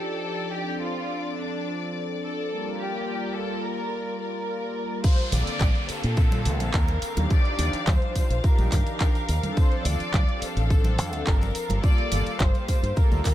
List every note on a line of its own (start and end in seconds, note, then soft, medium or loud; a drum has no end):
0.00 0.48 F3 medium
0.00 0.48 D4 medium
0.00 0.49 D#4 medium
0.00 0.49 G4 medium
0.00 0.52 A4 loud
0.00 5.06 D5 medium
0.51 2.46 F3 medium
0.51 2.46 C4 medium
0.51 2.47 D4 medium
0.51 0.80 G4 medium
0.51 2.47 A4 medium
0.80 1.32 F4 medium
1.37 1.93 D4 medium
2.22 2.74 A4 medium
2.49 5.01 G3 medium
2.49 5.01 A#3 medium
2.49 5.01 F4 medium
2.49 5.02 A#4 medium
2.78 3.34 G4 medium
3.34 3.63 A4 loud
3.62 4.19 A#4 loud
4.20 5.01 A#4 medium
5.04 5.33 C5 loud
5.04 13.34 F5 medium
5.04 kick loud
5.04 closed hi-hat medium
5.04 crash loud
5.04 tambourine medium
5.04 downlifter medium
5.19 closed hi-hat soft
5.32 5.47 A#1 medium
5.32 5.46 D3 medium
5.32 5.46 A#3 medium
5.32 5.46 C4 medium
5.32 5.46 A4 loud
5.32 5.89 D5 loud
5.32 open hi-hat loud
5.32 tambourine medium
5.32 low conga medium
5.47 closed hi-hat medium
5.47 tambourine soft
5.60 5.70 A#1 medium
5.60 kick loud
5.60 clap loud
5.60 closed hi-hat medium
5.60 tambourine medium
5.60 high conga medium
5.75 5.88 D3 medium
5.75 5.88 A#3 medium
5.75 5.88 C4 medium
5.75 5.88 G4 medium
5.75 closed hi-hat soft
5.89 6.74 A4 medium
5.89 muted fingered electric bass stroke soft
5.89 open hi-hat loud
5.89 tambourine medium
6.03 6.47 A#2 medium
6.03 closed hi-hat medium
6.03 tambourine soft
6.17 6.39 D3 loud
6.17 6.39 A#3 medium
6.17 6.39 C4 medium
6.17 6.39 A4 loud
6.17 kick loud
6.17 closed hi-hat medium
6.17 tambourine medium
6.32 closed hi-hat soft
6.32 tambourine soft
6.32 muted conga medium
6.32 high conga medium
6.45 6.60 D2 medium
6.45 open hi-hat loud
6.45 tambourine medium
6.45 low conga medium
6.60 6.69 A#1 loud
6.60 6.81 D3 medium
6.60 6.81 A#3 medium
6.60 6.81 C4 medium
6.60 6.82 A4 medium
6.60 closed hi-hat medium
6.60 tambourine soft
6.60 muted conga medium
6.73 7.02 D#2 medium
6.73 7.27 A#4 medium
6.73 kick loud
6.73 clap loud
6.73 closed hi-hat medium
6.73 tambourine medium
6.88 closed hi-hat soft
6.88 tambourine soft
6.88 muted conga medium
7.02 muted fingered electric bass stroke soft
7.02 open hi-hat loud
7.02 tambourine medium
7.17 7.25 D#2 medium
7.17 7.56 F3 medium
7.17 7.56 D4 medium
7.17 7.56 D#4 medium
7.17 7.56 G4 loud
7.17 closed hi-hat medium
7.17 tambourine soft
7.17 muted conga medium
7.17 high conga loud
7.17 low conga medium
7.30 7.87 D5 loud
7.30 kick loud
7.30 closed hi-hat medium
7.30 tambourine soft
7.45 closed hi-hat soft
7.58 7.73 D#2 loud
7.58 7.72 F3 medium
7.58 7.72 D4 medium
7.58 7.73 D#4 medium
7.58 7.73 G4 loud
7.58 open hi-hat loud
7.58 tambourine medium
7.58 muted conga medium
7.58 low conga medium
7.73 muted fingered electric bass stroke soft
7.73 closed hi-hat medium
7.73 tambourine soft
7.87 7.97 D#2 loud
7.87 8.44 C5 loud
7.87 kick loud
7.87 clap loud
7.87 closed hi-hat medium
7.87 tambourine medium
7.87 muted conga medium
7.87 high conga medium
8.02 8.15 F3 medium
8.02 8.15 D4 medium
8.02 8.15 D#4 medium
8.02 8.15 F4 medium
8.02 closed hi-hat soft
8.15 muted fingered electric bass stroke soft
8.15 kick medium
8.15 open hi-hat loud
8.15 tambourine medium
8.30 8.39 A#1 medium
8.30 closed hi-hat medium
8.30 tambourine soft
8.43 8.65 F3 loud
8.43 8.65 D4 medium
8.43 8.65 D#4 medium
8.43 8.65 G4 loud
8.43 8.71 A#4 medium
8.43 kick loud
8.43 closed hi-hat medium
8.43 tambourine medium
8.58 8.67 A#1 loud
8.58 closed hi-hat soft
8.58 tambourine soft
8.58 high conga medium
8.72 8.81 G2 medium
8.72 9.53 A#4 loud
8.72 kick medium
8.72 clap medium
8.72 open hi-hat loud
8.72 tambourine medium
8.72 low conga medium
8.87 9.07 F3 medium
8.87 9.08 D4 medium
8.87 9.08 D#4 medium
8.87 9.08 G4 medium
8.87 closed hi-hat medium
8.87 tambourine soft
9.00 kick loud
9.00 clap loud
9.00 closed hi-hat medium
9.00 tambourine soft
9.15 closed hi-hat soft
9.15 tambourine soft
9.29 9.38 D#2 medium
9.29 open hi-hat loud
9.29 tambourine medium
9.43 9.82 F3 medium
9.43 9.82 C4 medium
9.43 9.82 D4 medium
9.43 9.83 A4 loud
9.43 closed hi-hat medium
9.43 tambourine soft
9.43 high conga medium
9.43 low conga medium
9.57 9.83 C5 loud
9.57 kick loud
9.57 closed hi-hat medium
9.57 tambourine medium
9.72 closed hi-hat soft
9.85 10.00 D2 loud
9.85 9.99 F3 loud
9.85 9.99 C4 medium
9.85 9.99 D4 medium
9.85 9.99 A4 loud
9.85 10.42 D5 loud
9.85 open hi-hat loud
9.85 tambourine medium
9.85 low conga medium
10.00 muted fingered electric bass stroke soft
10.00 closed hi-hat medium
10.00 tambourine soft
10.14 10.23 D2 loud
10.14 kick loud
10.14 clap loud
10.14 closed hi-hat medium
10.14 tambourine soft
10.14 high conga loud
10.28 10.41 F3 medium
10.28 10.41 C4 medium
10.28 10.41 D4 medium
10.28 10.41 G4 medium
10.28 closed hi-hat soft
10.41 11.27 A4 loud
10.41 muted fingered electric bass stroke soft
10.41 open hi-hat loud
10.41 tambourine medium
10.57 10.99 A1 medium
10.57 closed hi-hat medium
10.57 tambourine soft
10.70 10.91 F3 loud
10.70 10.92 C4 medium
10.70 10.92 D4 medium
10.70 10.92 A4 loud
10.70 kick loud
10.70 closed hi-hat soft
10.70 tambourine soft
10.84 closed hi-hat soft
10.84 tambourine soft
10.84 muted conga medium
10.84 high conga medium
10.98 11.13 F2 medium
10.98 open hi-hat loud
10.98 tambourine medium
10.98 low conga medium
11.13 11.22 D2 loud
11.13 11.34 F3 medium
11.13 11.34 C4 medium
11.13 11.34 D4 medium
11.13 11.34 A4 medium
11.13 closed hi-hat medium
11.13 tambourine soft
11.13 muted conga medium
11.27 11.55 G1 medium
11.27 11.83 A#4 medium
11.27 kick loud
11.27 clap loud
11.27 closed hi-hat soft
11.27 tambourine soft
11.41 closed hi-hat soft
11.41 tambourine soft
11.41 muted conga medium
11.55 open hi-hat loud
11.55 tambourine medium
11.69 11.78 G1 medium
11.69 12.09 G3 medium
11.69 12.09 A#3 medium
11.69 12.09 F4 medium
11.69 12.09 A4 loud
11.69 closed hi-hat medium
11.69 tambourine soft
11.69 muted conga medium
11.69 high conga medium
11.69 low conga medium
11.83 12.36 D5 loud
11.83 kick loud
11.83 closed hi-hat soft
11.83 tambourine medium
11.98 closed hi-hat soft
12.12 12.26 G1 loud
12.12 12.25 G3 medium
12.12 12.26 A#3 medium
12.12 12.26 F4 medium
12.12 12.26 A4 loud
12.12 open hi-hat loud
12.12 tambourine medium
12.12 muted conga medium
12.12 low conga medium
12.26 muted fingered electric bass stroke soft
12.26 closed hi-hat medium
12.26 tambourine soft
12.39 12.49 G1 loud
12.39 12.96 C5 loud
12.39 kick loud
12.39 clap loud
12.39 closed hi-hat soft
12.39 tambourine soft
12.39 muted conga medium
12.39 high conga medium
12.54 12.67 G3 medium
12.54 12.67 A#3 medium
12.54 12.68 F4 medium
12.54 12.68 G4 medium
12.54 closed hi-hat soft
12.54 tambourine soft
12.68 muted fingered electric bass stroke soft
12.68 kick medium
12.68 open hi-hat loud
12.68 tambourine medium
12.68 muted conga medium
12.83 12.92 G2 medium
12.83 closed hi-hat medium
12.83 tambourine soft
12.96 13.18 G3 loud
12.96 13.18 A#3 medium
12.96 13.18 F4 medium
12.96 13.19 A4 loud
12.96 13.23 A#4 medium
12.96 kick loud
12.96 closed hi-hat soft
12.96 tambourine soft
12.96 muted conga soft
13.11 13.20 D2 loud
13.11 closed hi-hat soft
13.11 tambourine soft
13.11 high conga medium
13.25 13.34 A#4 loud
13.25 kick medium
13.25 clap medium
13.25 open hi-hat loud
13.25 tambourine medium
13.25 low conga medium